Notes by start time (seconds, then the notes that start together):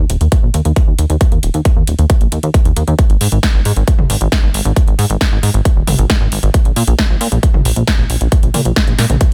0.10 D#1, closed hi-hat
0.21 D#2, closed hi-hat
0.32 kick, closed hi-hat
0.43 A#1
0.54 D#2, closed hi-hat
0.65 D#2, closed hi-hat
0.76 kick, closed hi-hat
0.87 D#2
0.99 D#2, closed hi-hat
1.10 D#2, closed hi-hat
1.21 kick, closed hi-hat
1.32 D#2, closed hi-hat
1.43 D#1, closed hi-hat
1.54 D#2, closed hi-hat
1.65 kick, closed hi-hat
1.76 D#2
1.87 D#1, closed hi-hat
1.99 D#2, closed hi-hat
2.10 kick, closed hi-hat
2.21 A#1, closed hi-hat
2.32 D#2, closed hi-hat
2.43 D#2, closed hi-hat
2.54 kick, closed hi-hat
2.65 D#2, closed hi-hat
2.76 D#2, closed hi-hat
2.88 D#2, closed hi-hat
2.99 kick, closed hi-hat
3.10 G#1, closed hi-hat
3.21 G#2, open hi-hat
3.32 G#1, closed hi-hat
3.43 kick, snare, closed hi-hat
3.54 G#1
3.65 G#2, open hi-hat
3.76 G#1, closed hi-hat
3.88 kick, closed hi-hat
3.99 D#1, mid tom
4.10 G#1, open hi-hat
4.21 G#1, closed hi-hat
4.32 kick, snare, closed hi-hat
4.43 G#1
4.54 G#1, open hi-hat
4.65 G#1, closed hi-hat
4.76 kick, closed hi-hat
4.87 G#1, closed hi-hat
4.99 G#2, open hi-hat
5.10 G#1, closed hi-hat
5.21 kick, snare, closed hi-hat
5.32 G#1
5.43 G#2, open hi-hat
5.54 G#1, closed hi-hat
5.65 kick, closed hi-hat
5.76 D#1
5.87 G#1, open hi-hat, mid tom
5.99 G#1, closed hi-hat
6.10 kick, snare, closed hi-hat
6.21 G#1
6.32 G#1, open hi-hat
6.43 G#1, closed hi-hat
6.54 kick, closed hi-hat
6.65 A#1, closed hi-hat
6.76 A#2, open hi-hat
6.87 A#1, closed hi-hat
6.99 kick, snare, closed hi-hat
7.10 A#1
7.21 A#2, open hi-hat
7.32 A#1, closed hi-hat
7.43 kick, closed hi-hat
7.54 G#1, mid tom
7.65 A#1, open hi-hat
7.76 A#1, closed hi-hat
7.87 kick, snare, closed hi-hat
7.99 A#1
8.10 A#1, open hi-hat
8.21 A#1, closed hi-hat
8.32 kick, closed hi-hat
8.43 A#1, closed hi-hat
8.54 A#2, open hi-hat, mid tom
8.65 A#1, closed hi-hat
8.76 kick, snare, closed hi-hat
8.87 A#1, closed hi-hat
8.99 A#2, snare, open hi-hat
9.10 A#1, closed hi-hat, mid tom
9.21 kick, closed hi-hat